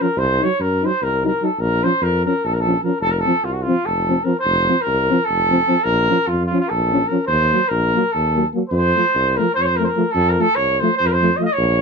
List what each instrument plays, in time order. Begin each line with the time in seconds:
0.00 euphonium F3 C#4, cornet A#4
0.17 tuba C2, cornet C5
0.39 euphonium F#3 D#4, cornet C#5
0.59 tuba F#2, cornet A#4
0.82 euphonium F#3 D#4, cornet C5
1.02 tuba C2, cornet A#4
1.23 euphonium F#3 D#4, cornet A#4
1.42 euphonium F#3 D#4, cornet A4
1.59 tuba A#1, cornet A#4
1.84 euphonium F3 C#4, cornet C5
2.01 tuba F2, cornet A#4
2.25 euphonium F3 C#4, cornet A#4
2.44 tuba A#1, cornet A4
2.54 cornet A#4
2.60 cornet A4
2.67 euphonium F3 C#4
2.84 euphonium F3 C#4, cornet A#4
3.01 tuba F1, cornet A4
3.11 cornet A#4
3.19 cornet A4
3.26 euphonium F3 C4
3.44 tuba C2, cornet F4
3.53 cornet F#4
3.62 cornet F4
3.68 euphonium F3 C4
3.86 tuba F1, cornet A4
4.08 euphonium F3 C4
4.24 euphonium F3 C4, cornet A#4
4.39 cornet C5
4.44 tuba F1
4.67 euphonium F3 C4
4.81 cornet A#4
4.87 tuba C2
5.10 euphonium F3 C4
5.25 tuba F1, cornet A4
5.50 euphonium F3 C4
5.68 euphonium F3 C4
5.84 tuba A#1, cornet A#4
6.09 euphonium F3 C#4
6.27 tuba F2, cornet F4
6.46 cornet F4
6.52 euphonium F3 C#4
6.60 cornet F4
6.67 cornet A4 A#4
6.71 tuba A#1
6.92 euphonium F3 C#4
7.08 euphonium F3 C#4, cornet A#4
7.27 tuba D#2, cornet C5
7.52 euphonium F#3 A#3
7.69 tuba A#1, cornet A#4
7.94 euphonium F#3 A#3
8.12 tuba D#2, cornet A4
8.35 euphonium F#3 A#3
8.54 euphonium F#3 A#3
8.70 tuba F2, cornet C5
8.96 euphonium F3 A3
9.15 tuba C2
9.37 euphonium F3 A3, cornet A#4
9.54 tuba F2, cornet C5
9.61 cornet C5 C#5
9.76 euphonium F3 A3, cornet A#4
9.84 cornet A#4 C5
9.97 euphonium F3 A3
10.12 tuba F2, cornet A4
10.30 cornet A#4
10.38 euphonium F3 A3, cornet A4
10.56 tuba C2, cornet C#5
10.80 euphonium F3 A3, cornet C5
10.97 tuba F2, cornet C5
11.07 cornet A#4
11.13 cornet C5
11.22 euphonium F3 A3
11.37 euphonium F3 A3, cornet D#5
11.43 cornet D#5 F5
11.53 cornet C#5
11.58 tuba A#1